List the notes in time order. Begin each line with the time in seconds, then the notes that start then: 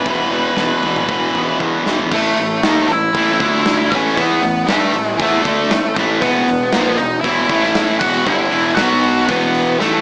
Already playing: G#3 B3 B4
0.06 E1 E2 B2 E3, kick, floor tom
0.28 E1 E2 G#3
0.33 B2 E3
0.55 E1 E2 B3, snare, floor tom
0.59 B2 E3
0.81 E1 G#3, floor tom
0.85 E2 B2 E3
0.96 mid tom
1.08 E1 E2 B2 E3, kick
1.33 E1 B3, floor tom
1.37 E2 B2 E3
1.60 E2 B2 E3, kick
1.85 E1 E2 B2 E3 G#3, snare
1.99 floor tom
2.11 A1 A2 E3 A3, kick, crash
2.16 A4
2.37 A1 A2 E3, open hi-hat
2.63 D#2 D#3 D#4, snare, open hi-hat
2.67 A#3
2.88 A1 A2, open hi-hat
2.92 A2 E3 E4 E5
3.13 A1 A2 E3, kick, open hi-hat
3.17 E3 A3
3.40 D2 D3 A3 D4, kick, open hi-hat
3.66 snare, open hi-hat
3.92 A1 A2 E3 A3 C#4, kick, snare, open hi-hat
3.96 C#5
4.17 E2 E3 B3 E4 B4, kick, open hi-hat
4.41 A1 A2 E3, open hi-hat
4.67 G2 G3 A3 D4 G4, snare, open hi-hat
4.72 A4
4.92 A1 E3, open hi-hat
4.96 A2 E3
5.06 G#4
5.17 E2 E3 B3 E4, kick, open hi-hat
5.21 E3 A3 B3 E4 A4
5.42 D2 D3 A3 D4, kick, open hi-hat
5.47 D3 A3 D4
5.67 A1 A2 E3, snare, open hi-hat
5.73 A2 E3
5.94 A1 A2 E3 A3, kick, snare, open hi-hat
5.99 A2 E3 A3
6.20 E1 B2 E3 B3 B4, kick, open hi-hat
6.24 E2 B2 E3
6.46 E1 E2 B2, open hi-hat
6.72 A#1 A#2 F3 A#3, snare, open hi-hat
6.96 E1 E2 B2 D#4 D#5, open hi-hat
7.21 E1 E4 E5, kick, open hi-hat
7.25 E2 B2 E3
7.49 A1 A2 E3 A3, kick, open hi-hat
7.63 snare
7.75 snare, open hi-hat
7.99 E1 E2 B2 E3 F#4 F#5, kick, snare, crash
8.26 G1 G2 D3 G3 E4 E5, kick
8.50 E1 E2 B2 E3, open hi-hat
8.75 B1 B2 F#3 B3 F#4 F#5, snare, open hi-hat
9.04 open hi-hat
9.28 E1 E2 B2 E3 B3 B4, kick, open hi-hat
9.55 open hi-hat
9.80 A1 A2 E3 A3 A4, snare